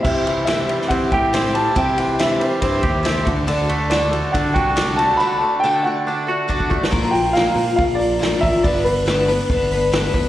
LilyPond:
<<
  \new Staff \with { instrumentName = "Grand piano" } { \time 4/4 \key c \lydian \tempo 4 = 140 e''4 e''4 fis''8 g''4 a''8 | g''8 g''8 e''8 c''4. r4 | d''4 d''4 fis''8 g''4 a''8 | b''8 a''8 g''8 fis''4. r4 |
r8 g''8 f''4 f''8 d''4 e''8 | d''8 b'2. r8 | }
  \new Staff \with { instrumentName = "Twelve-string acoustic guitar" } { \time 4/4 \key c \lydian <c g c' e' g'>8 <c' e' g'>8 <c g c' e' g'>8 <c' e' g'>8 <g c' e' g'>8 <c' e' g'>8 <c g c' e' g'>8 <c' e' g'>8 | <c g c' e' g'>8 <c' e' g'>8 <c g c' e' g'>8 <c' e' g'>8 <g c' e' g'>8 <c' e' g'>8 <c g c' e' g'>8 <d' fis' a'>8 | <d a d' fis' a'>8 <d' fis' a'>8 <d a d' fis' a'>8 <d' fis' a'>8 <a d' fis' a'>8 <d' fis' a'>8 <d a d' fis' a'>8 <d' fis' a'>8 | <d a d' fis' a'>8 <d' fis' a'>8 <d a d' fis' a'>8 <d' fis' a'>8 <a d' fis' a'>8 <d' fis' a'>8 <d a d' fis' a'>8 <d' fis' a'>8 |
<bes, d f bes f' bes'>8 <f bes f' bes'>8 <bes, d f bes f' bes'>8 <f bes f' bes'>8 <f bes f' bes'>8 <f bes f' bes'>8 <bes, d f bes f' bes'>8 <f bes f' bes'>8 | <g, d a b d' b'>8 <a b d' b'>8 <g, d a b d' b'>8 <a b d' b'>8 <a b d' b'>8 <a b d' b'>8 <g, d a b d' b'>8 <a b d' b'>8 | }
  \new Staff \with { instrumentName = "Clean electric guitar" } { \time 4/4 \key c \lydian c8 e8 e8 g8 c'8 g'8 c'8 g8 | c8 e8 e8 g8 c'8 g'8 c'8 d8 | d8 a8 d8 a8 d'8 fis'8 d'8 a8 | d8 a8 d8 a8 d'8 fis'8 d'8 a8 |
r1 | r1 | }
  \new Staff \with { instrumentName = "Picked electric bass" } { \clef bass \time 4/4 \key c \lydian c2 c8 a,4. | c2 g,8 ees,4 d,8 | d,2 d8 c,4. | r1 |
bes,,4. bes,8 bes,,4. a,,8 | g,,2 g,,4. f,,8 | }
  \new DrumStaff \with { instrumentName = "Drums" } \drummode { \time 4/4 <cymc bd>8 cymr8 <cymr sn>8 cymr16 sn16 <bd cymr>8 <bd cymr>8 <cymr sn>16 sn16 cymr8 | <bd cymr>8 cymr8 <cymr sn>8 cymr8 <bd cymr>8 <bd cymr>8 <cymr sn>8 <bd cymr>8 | cymr8 cymr8 <cymr sn>8 cymr8 <bd cymr>8 <bd cymr>8 <cymr sn>8 cymr8 | r4 r4 r4 bd16 bd16 bd16 sn16 |
<hho bd>8 hho8 <hho sn>8 hho8 <hho bd>8 hho8 <hho sn>8 <hho bd>8 | <hho bd>8 hho8 <hho sn>8 hho8 <hho bd>8 hho8 <hho sn>8 <hho bd>8 | }
>>